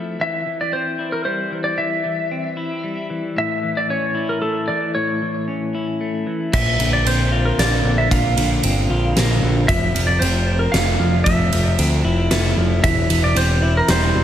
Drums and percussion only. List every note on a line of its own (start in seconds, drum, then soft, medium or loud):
6.53 kick medium
6.53 crash medium
6.80 ride medium
7.07 ride medium
7.59 snare medium
7.59 ride medium
8.11 kick medium
8.11 ride medium
8.37 ride medium
8.63 ride medium
9.17 snare medium
9.17 ride medium
9.69 kick medium
9.69 ride medium
9.96 ride medium
10.22 ride medium
10.74 snare medium
10.74 ride medium
11.26 kick medium
11.26 ride medium
11.53 ride medium
11.79 ride medium
12.31 snare medium
12.31 ride medium
12.84 kick medium
12.84 ride medium
13.10 ride medium
13.36 ride medium
13.88 snare medium
13.88 ride medium